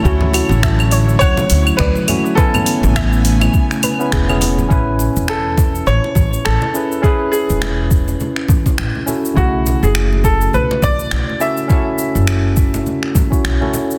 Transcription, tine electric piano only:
X:1
M:4/4
L:1/16
Q:"Swing 16ths" 1/4=103
K:A
V:1 name="Tine electric piano"
[A,CEF]12- [A,CEF]2 [A,CEF]2 | [B,CEg]8- [B,CEg]3 [B,CEB]2 [B,CEG]3 | [CEBg]12- [CEBg]2 [CEGB]2 | [CEGB]12- [CEGB]2 [CEFA]2 |
[C,A,EF]12- [C,A,EF]2 [CEFA]2 | [CEFA]8- [CEFA]3 [CEFc]2 [CEFA]3 |]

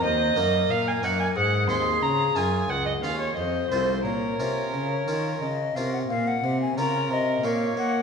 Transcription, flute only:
X:1
M:3/4
L:1/16
Q:1/4=90
K:Bbm
V:1 name="Flute"
c2 B6 A4- | A6 z2 c4 | d4 d4 e2 f g | f g2 a b2 e2 f2 g2 |]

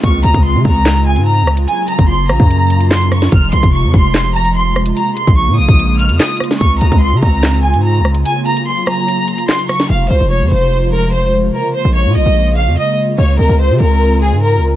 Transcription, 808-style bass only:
X:1
M:4/4
L:1/16
Q:1/4=146
K:Fphr
V:1 name="808-style bass" clef=bass
D,,2 D,, D,,2 D, D,,4- D,, A,,2- A,,/2 D,,2- D,,/2 | z3 G,,,3 B,,, G,,8- G,, | F,,,2 C,, F,,,2 F,, F,,,8- F,,,2 | z3 B,,,2 B,, B,,, B,,,4 F,, z4 |
D,,2 D,, D,,2 D, D,,4- D,, A,,2- A,,/2 D,,2- D,,/2 | z16 | F,,,2 C,, F,,,2 F,, F,,,8- F,,,2 | z3 B,,,2 B,, B,,, B,,,4 F,, z4 |
D,,2 D,, D,,2 D, D,,4- D,, A,,2- A,,/2 D,,2- D,,/2 |]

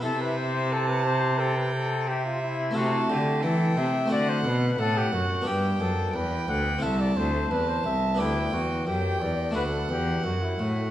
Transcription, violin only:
X:1
M:4/4
L:1/8
Q:1/4=88
K:C
V:1 name="Violin"
e2 a2 g2 e2 | [K:G] a2 g2 f2 f2 | g2 g2 a2 a2 | g2 g2 f4 |]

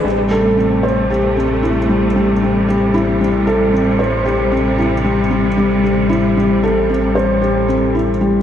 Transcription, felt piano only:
X:1
M:4/4
L:1/8
Q:1/4=114
K:Am
V:1 name="Felt piano"
G, A C c G C E G, | G, G, G E G, A C c | G C E G, G, G, G E | G, A C c G C E G, |]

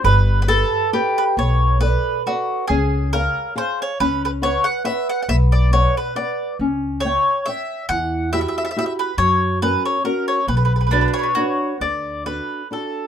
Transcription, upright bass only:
X:1
M:3/4
L:1/8
Q:"Swing" 1/4=138
K:G
V:1 name="Upright bass" clef=bass
G,,,4 z2 | [K:Bm] B,,,4 z2 | C,,4 z2 | C,,4 z2 |
B,,,4 z2 | C,,4 z2 | E,,4 z2 | F,,4 z2 |
B,,,4 z2 | [K:D] D,,4 z2 |]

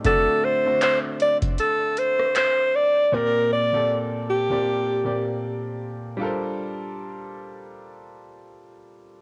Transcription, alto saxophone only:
X:1
M:4/4
L:1/8
Q:"Swing 16ths" 1/4=78
K:Bb
V:1 name="Alto saxophone"
A c c d A c c d | B d z G3 z2 | z8 |]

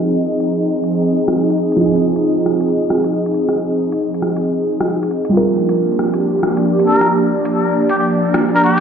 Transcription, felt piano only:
X:1
M:4/4
L:1/8
Q:"Swing 16ths" 1/4=136
K:Fdor
V:1 name="Felt piano"
[F,EA]8 | [F,EA]8- | [F,EA]8 | [G,FB]8- |
[G,FB]8 |]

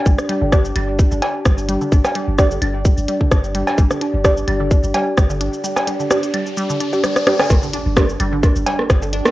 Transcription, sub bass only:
X:1
M:4/4
L:1/16
Q:"Swing 16ths" 1/4=129
K:Cdor
V:1 name="Sub bass" clef=bass
G,,, z2 G,,,3 G,,,3 G,,, z2 G,,,3 z | G,,, z2 G,,,3 G,,,3 G,,, z2 G,,,3 z | G,,, z2 G,,,3 G,,,3 G,,, z2 G,,,3 z | z16 |
G,,, z2 G,,,3 G,,,3 G,,, z2 G,,,3 z |]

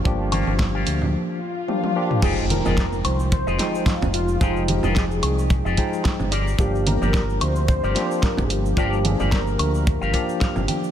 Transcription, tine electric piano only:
X:1
M:4/4
L:1/8
Q:"Swing 16ths" 1/4=110
K:Fdor
V:1 name="Tine electric piano"
[F,B,DG]4- [F,B,DG] z [F,B,DG] [F,B,DG] | [A,Eg]4- [A,Eg] [F,A,Eg]3 | [F,A,Eg]4- [F,A,Eg] [F,A,Eg]2 z | [F,B,DG]4- [F,B,DG] [F,B,DG]3 |
[F,B,DG]4- [F,B,DG] [F,B,DG]3 |]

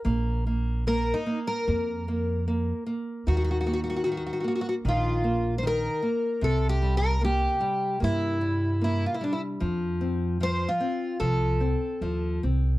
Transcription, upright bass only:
X:1
M:4/4
L:1/8
Q:1/4=75
K:Fphr
V:1 name="Upright bass" clef=bass
B,,,4 F,,4 | E,,4 B,,,4 | C,,4 =G,,4 | F,,4 C,,2 E,, C,, |]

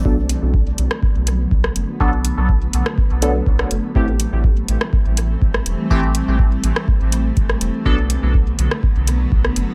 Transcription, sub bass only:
X:1
M:4/4
L:1/16
Q:1/4=123
K:Bphr
V:1 name="Sub bass" clef=bass
z3 B,,,3 B,,, z2 B,,,3 B,,, z F,,, z | B,,,3 B,,,3 B,,, z2 B,,,3 B,,, z F,,, z | A,,,3 A,,,3 A,,, z2 A,,,3 A,,, z E,,, z | A,,,3 A,,,3 A,,, z2 A,,,3 A,,, z E,,, z |
B,,,3 B,,,3 B,,, z2 B,,,3 B,,, z F,,, z |]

